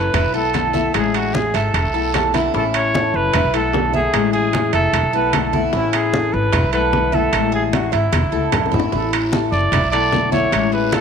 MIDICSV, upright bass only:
0, 0, Header, 1, 2, 480
1, 0, Start_track
1, 0, Key_signature, 3, "major"
1, 0, Tempo, 399202
1, 1130, Time_signature, 4, 2, 24, 8
1, 13236, End_track
2, 0, Start_track
2, 0, Title_t, "Upright bass"
2, 0, Program_c, 0, 32
2, 0, Note_on_c, 0, 30, 94
2, 156, Note_off_c, 0, 30, 0
2, 166, Note_on_c, 0, 28, 99
2, 282, Note_off_c, 0, 28, 0
2, 289, Note_on_c, 0, 35, 82
2, 1088, Note_off_c, 0, 35, 0
2, 1140, Note_on_c, 0, 33, 101
2, 1820, Note_off_c, 0, 33, 0
2, 1854, Note_on_c, 0, 32, 99
2, 2081, Note_off_c, 0, 32, 0
2, 2091, Note_on_c, 0, 28, 100
2, 2205, Note_off_c, 0, 28, 0
2, 2212, Note_on_c, 0, 35, 79
2, 3009, Note_off_c, 0, 35, 0
2, 3057, Note_on_c, 0, 33, 95
2, 3738, Note_off_c, 0, 33, 0
2, 3774, Note_on_c, 0, 30, 100
2, 4001, Note_off_c, 0, 30, 0
2, 4018, Note_on_c, 0, 28, 96
2, 4128, Note_off_c, 0, 28, 0
2, 4142, Note_on_c, 0, 35, 83
2, 4934, Note_off_c, 0, 35, 0
2, 4972, Note_on_c, 0, 33, 103
2, 5655, Note_off_c, 0, 33, 0
2, 5692, Note_on_c, 0, 29, 102
2, 5919, Note_off_c, 0, 29, 0
2, 5928, Note_on_c, 0, 28, 94
2, 6043, Note_off_c, 0, 28, 0
2, 6050, Note_on_c, 0, 35, 87
2, 6848, Note_off_c, 0, 35, 0
2, 6890, Note_on_c, 0, 33, 102
2, 7574, Note_off_c, 0, 33, 0
2, 7618, Note_on_c, 0, 32, 105
2, 7842, Note_off_c, 0, 32, 0
2, 7855, Note_on_c, 0, 28, 101
2, 7967, Note_off_c, 0, 28, 0
2, 7985, Note_on_c, 0, 35, 88
2, 8776, Note_off_c, 0, 35, 0
2, 8811, Note_on_c, 0, 33, 102
2, 9495, Note_off_c, 0, 33, 0
2, 9532, Note_on_c, 0, 32, 96
2, 9759, Note_off_c, 0, 32, 0
2, 9770, Note_on_c, 0, 28, 102
2, 9885, Note_off_c, 0, 28, 0
2, 9891, Note_on_c, 0, 35, 77
2, 10000, Note_off_c, 0, 35, 0
2, 10008, Note_on_c, 0, 37, 81
2, 10225, Note_off_c, 0, 37, 0
2, 10251, Note_on_c, 0, 35, 77
2, 10467, Note_off_c, 0, 35, 0
2, 10495, Note_on_c, 0, 33, 85
2, 10709, Note_off_c, 0, 33, 0
2, 10736, Note_on_c, 0, 33, 101
2, 11418, Note_off_c, 0, 33, 0
2, 11447, Note_on_c, 0, 30, 100
2, 11677, Note_off_c, 0, 30, 0
2, 11685, Note_on_c, 0, 28, 105
2, 11802, Note_off_c, 0, 28, 0
2, 11812, Note_on_c, 0, 35, 86
2, 12610, Note_off_c, 0, 35, 0
2, 12654, Note_on_c, 0, 33, 105
2, 13236, Note_off_c, 0, 33, 0
2, 13236, End_track
0, 0, End_of_file